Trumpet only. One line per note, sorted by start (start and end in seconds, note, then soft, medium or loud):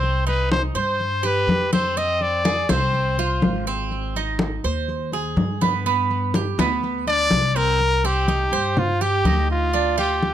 0.00 0.27 C5 loud
0.27 0.50 B4 medium
0.52 0.62 C5 medium
0.77 1.27 C5 medium
1.26 1.73 B4 loud
1.73 1.99 C5 medium
1.97 2.23 D#5 loud
2.22 2.72 D5 loud
2.71 3.67 C5 medium
7.08 7.58 D5 loud
7.56 8.07 A#4 loud
8.06 8.80 G4 medium
8.79 9.03 F4 medium
9.02 9.50 G4 loud
9.51 9.95 F4 medium
9.99 10.34 G4 medium